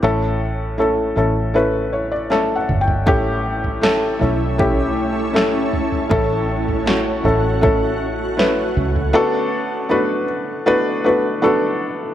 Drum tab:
SD |------------o---|----o-------o---|----o-------o---|----------------|
T2 |--------------o-|----------------|----------------|----------------|
FT |---------------o|o--o--o-o-----oo|o--o--o-o-----oo|----------------|
BD |----------------|o-------o-------|o-------o-------|----------------|